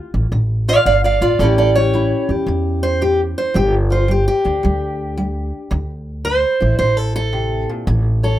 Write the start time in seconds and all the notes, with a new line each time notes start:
Already playing: D3 F4
0.14 A1
0.32 A1 D3
0.68 F4 D5 F5
0.86 G1 D3 D5 F5
1.04 D5 F5
1.21 A1 F4 D5
1.39 A1 A2 C#4 E4 A4 D5
1.43 G4
1.58 A4 D5
1.75 G4 C#5
1.94 A2 E4
2.29 E2 G4
2.46 E2 A2
2.83 C5
3.01 A2 G4
3.38 C5
3.54 G1 G3 G4
3.90 F4 C5
4.08 G3 G4
4.28 G4
4.45 D2 D4
4.63 D2 G3
5.17 G3
5.71 D2 D3
6.25 D3 C5
6.60 A1 E4
6.79 A1 D3 C5
6.97 A4
7.16 A4
7.33 C3
7.69 A#2
7.87 A1 A2
8.23 A4 C#5